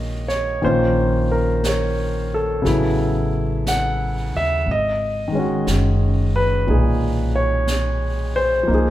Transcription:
Already playing: A#1 D#3 G#3 A#3 C#4 D#4 F#4 D#5 F5
0.28 C#5, snare
0.62 A#1 D#3 A#3 C#4 F4 C5, brush sweep
1.32 A#4
1.64 C#5, brush sweep, snare, hi-hat pedal
2.34 A4
2.62 A1 C#3 F#3 B3, brush sweep, snare
2.67 E4
3.67 F#5, brush sweep, snare, hi-hat pedal
4.32 D#2
4.37 E5
4.66 G#1, brush sweep
4.71 D#5
5.28 D#3
5.32 G#3 C#4
5.39 F#4
5.67 F#1, brush sweep, snare, hi-hat pedal
6.36 B4
6.67 B1 A#2 D#4 G#4, brush sweep
7.36 C#5
7.67 brush sweep, snare, hi-hat pedal
8.36 C5
8.63 F3
8.67 C2 A#3 D#4, brush sweep
8.74 G#4

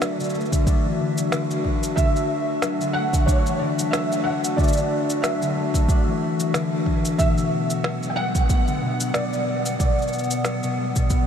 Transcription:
Already playing: D3 A3 D4 F#4 D5 E5
0.02 F#3, snare, cabasa
0.20 D3, cabasa
0.24 cabasa
0.30 cabasa
0.35 A3, cabasa
0.41 cabasa
0.45 cabasa
0.52 D3, kick, cabasa
0.67 D4, kick, cabasa
0.85 E3
1.00 D3
1.18 F#3, cabasa
1.32 D3, snare, cabasa
1.50 A3, cabasa
1.65 D3, kick
1.83 cabasa
1.96 D3 E5, kick, cabasa
2.16 cabasa
2.62 F#3, snare, cabasa
2.81 D3, cabasa
2.93 A3 F#5
3.13 D3, kick, cabasa
3.26 D4 C#5, kick, cabasa
3.46 E3, cabasa
3.59 D3 D5
3.79 F#3, cabasa
3.91 D3 E5, snare, cabasa
4.12 A3, cabasa
4.24 D3 F#5
4.44 cabasa
4.56 D3 D5, kick, cabasa
4.64 cabasa
4.68 cabasa
4.73 cabasa
4.77 cabasa
5.10 cabasa
5.22 F#3 E5, snare, cabasa
5.42 D3, cabasa
5.57 A3
5.74 D3, kick, cabasa
5.89 D4, kick, cabasa
6.07 E3
6.22 A3
6.40 F#3, cabasa
6.54 D3, snare, cabasa
6.72 A3
6.86 E3, kick
7.05 cabasa
7.18 B2 B3 E5 F#5, kick, cabasa
7.38 cabasa
7.70 cabasa
7.84 F#3, snare
8.03 B2, cabasa
8.10 G5
8.16 G3 F#5
8.35 B2, kick, cabasa
8.49 B3, kick, cabasa
8.68 D3, cabasa
8.82 B2
9.00 F#3, cabasa
9.14 B2 D5, snare, cabasa
9.33 G3, cabasa
9.47 G3
9.66 cabasa
9.79 B2 D5, kick, cabasa
9.99 cabasa
10.02 cabasa
10.08 cabasa
10.13 cabasa
10.19 cabasa
10.24 cabasa
10.31 cabasa
10.45 F#3, snare, cabasa
10.63 B2, cabasa
10.77 G3
10.95 B2, kick, cabasa
11.10 B3, kick, cabasa

